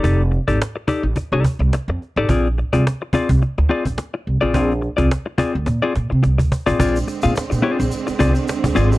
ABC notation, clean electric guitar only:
X:1
M:4/4
L:1/16
Q:"Swing 16ths" 1/4=106
K:Bb
V:1 name="Clean electric guitar"
[EGAd] z2 [EGAd] z2 [EGAd] z2 [EGAd] z4 z [EGAd] | [CF_Ad] z2 [CFAd] z2 [CFAd] z3 [CFAd] z4 [CFAd] | [CF_Ad] z2 [CFAd] z2 [CFAd] z2 [CFAd] z4 z [CFAd] | [CF_Ad] z2 [CFAf] z2 [CFAd] z3 [CFAd] z3 [CFAd] z |]